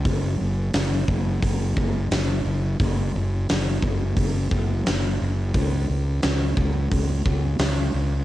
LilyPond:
<<
  \new Staff \with { instrumentName = "Fingered electric bass" } { \clef bass \time 4/4 \key ges \lydian \tempo 4 = 88 ges,,8 ges,,8 ges,,8 ges,,8 ges,,8 ges,,8 ges,,8 ges,,8 | ges,,8 ges,,8 ges,,8 ges,,8 ges,,8 ges,,8 ges,,8 ges,,8 | des,8 des,8 des,8 des,8 des,8 des,8 des,8 des,8 | }
  \new DrumStaff \with { instrumentName = "Drums" } \drummode { \time 4/4 <hho bd>4 <hho sn>8 bd8 <hho bd>8 bd8 <hho sn>4 | <hho bd>4 <hho sn>8 bd8 <hho bd>8 bd8 <hho sn>4 | <hho bd>4 <hho sn>8 bd8 <hho bd>8 bd8 <hho sn>4 | }
>>